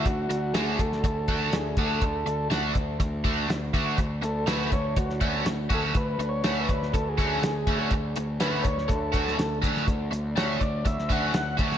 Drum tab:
HH |x-x-x-x-x-x-x-x-|x-x-x-x-x-x-x-x-|x-x-x-x-x-x-x-x-|x-x-x-x-x-x-x-x-|
SD |----o--o----o---|----o-------o---|----o----o--o---|----o--o----o---|
BD |o-----o-o-o---o-|o-----o-o-o---o-|o-----o-o-o---o-|o-----o-o-o---o-|

HH |x-x-x-x-x-x-x-x-|x-x-x-x-x-x-x-x-|
SD |----o--o---oo--o|----o----o--o--o|
BD |o-----o-o-o---o-|o-----o-o-o---o-|